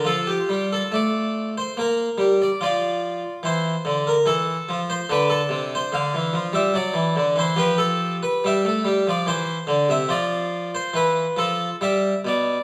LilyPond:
<<
  \new Staff \with { instrumentName = "Harpsichord" } { \time 3/4 \key d \minor \tempo 4 = 72 << { a'16 g'8 a'16 d''8. c''16 bes'8. d''16 | d''4 c''8. bes'16 a'8. c''16 | \key d \dorian b'16 a'8 c''16 f''8. e''16 d''8. c''16 | b'16 a'8 b'16 e''8. d''16 c''8. e''16 |
d''8. c''16 b'8 a'8 e''8 d''8 | } \\ { f'2 r4 | f'2. | d'2 r4 | g'2 r4 |
f'2 r4 | } >> }
  \new Staff \with { instrumentName = "Harpsichord" } { \clef bass \time 3/4 \key d \minor f8 g8 a4 bes8 g8 | f4 e8 d8 e8 f8 | \key d \dorian d8 c8 d16 e16 f16 g16 fis16 e16 d16 e16 | f4 g16 a16 g16 f16 e8 d16 c16 |
f4 e8 f8 g8 b,8 | }
>>